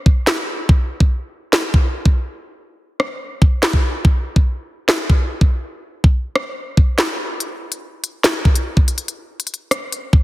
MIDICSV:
0, 0, Header, 1, 2, 480
1, 0, Start_track
1, 0, Tempo, 419580
1, 791, Time_signature, 4, 2, 24, 8
1, 11708, End_track
2, 0, Start_track
2, 0, Title_t, "Drums"
2, 69, Note_on_c, 9, 36, 103
2, 183, Note_off_c, 9, 36, 0
2, 310, Note_on_c, 9, 38, 114
2, 312, Note_on_c, 9, 39, 94
2, 424, Note_off_c, 9, 38, 0
2, 426, Note_off_c, 9, 39, 0
2, 790, Note_on_c, 9, 36, 127
2, 905, Note_off_c, 9, 36, 0
2, 1149, Note_on_c, 9, 36, 103
2, 1263, Note_off_c, 9, 36, 0
2, 1749, Note_on_c, 9, 38, 122
2, 1751, Note_on_c, 9, 39, 97
2, 1863, Note_off_c, 9, 38, 0
2, 1865, Note_off_c, 9, 39, 0
2, 1989, Note_on_c, 9, 36, 102
2, 2103, Note_off_c, 9, 36, 0
2, 2351, Note_on_c, 9, 36, 99
2, 2465, Note_off_c, 9, 36, 0
2, 3429, Note_on_c, 9, 37, 95
2, 3544, Note_off_c, 9, 37, 0
2, 3909, Note_on_c, 9, 36, 100
2, 4023, Note_off_c, 9, 36, 0
2, 4149, Note_on_c, 9, 38, 114
2, 4151, Note_on_c, 9, 39, 94
2, 4264, Note_off_c, 9, 38, 0
2, 4266, Note_off_c, 9, 39, 0
2, 4271, Note_on_c, 9, 36, 98
2, 4386, Note_off_c, 9, 36, 0
2, 4630, Note_on_c, 9, 36, 123
2, 4745, Note_off_c, 9, 36, 0
2, 4989, Note_on_c, 9, 36, 102
2, 5103, Note_off_c, 9, 36, 0
2, 5589, Note_on_c, 9, 38, 121
2, 5591, Note_on_c, 9, 39, 97
2, 5704, Note_off_c, 9, 38, 0
2, 5706, Note_off_c, 9, 39, 0
2, 5829, Note_on_c, 9, 36, 99
2, 5944, Note_off_c, 9, 36, 0
2, 6191, Note_on_c, 9, 36, 100
2, 6306, Note_off_c, 9, 36, 0
2, 6909, Note_on_c, 9, 36, 104
2, 7024, Note_off_c, 9, 36, 0
2, 7270, Note_on_c, 9, 37, 98
2, 7385, Note_off_c, 9, 37, 0
2, 7749, Note_on_c, 9, 36, 100
2, 7864, Note_off_c, 9, 36, 0
2, 7990, Note_on_c, 9, 38, 115
2, 7992, Note_on_c, 9, 39, 94
2, 8104, Note_off_c, 9, 38, 0
2, 8107, Note_off_c, 9, 39, 0
2, 8470, Note_on_c, 9, 42, 77
2, 8584, Note_off_c, 9, 42, 0
2, 8828, Note_on_c, 9, 42, 76
2, 8942, Note_off_c, 9, 42, 0
2, 9194, Note_on_c, 9, 42, 82
2, 9308, Note_off_c, 9, 42, 0
2, 9428, Note_on_c, 9, 38, 125
2, 9430, Note_on_c, 9, 39, 96
2, 9433, Note_on_c, 9, 42, 83
2, 9543, Note_off_c, 9, 38, 0
2, 9545, Note_off_c, 9, 39, 0
2, 9547, Note_off_c, 9, 42, 0
2, 9669, Note_on_c, 9, 36, 103
2, 9783, Note_off_c, 9, 36, 0
2, 9786, Note_on_c, 9, 42, 83
2, 9901, Note_off_c, 9, 42, 0
2, 10031, Note_on_c, 9, 36, 99
2, 10146, Note_off_c, 9, 36, 0
2, 10158, Note_on_c, 9, 42, 83
2, 10270, Note_off_c, 9, 42, 0
2, 10270, Note_on_c, 9, 42, 71
2, 10385, Note_off_c, 9, 42, 0
2, 10391, Note_on_c, 9, 42, 78
2, 10505, Note_off_c, 9, 42, 0
2, 10750, Note_on_c, 9, 42, 74
2, 10830, Note_off_c, 9, 42, 0
2, 10830, Note_on_c, 9, 42, 60
2, 10910, Note_off_c, 9, 42, 0
2, 10910, Note_on_c, 9, 42, 45
2, 11025, Note_off_c, 9, 42, 0
2, 11110, Note_on_c, 9, 37, 97
2, 11114, Note_on_c, 9, 42, 83
2, 11224, Note_off_c, 9, 37, 0
2, 11228, Note_off_c, 9, 42, 0
2, 11354, Note_on_c, 9, 42, 87
2, 11468, Note_off_c, 9, 42, 0
2, 11589, Note_on_c, 9, 36, 103
2, 11704, Note_off_c, 9, 36, 0
2, 11708, End_track
0, 0, End_of_file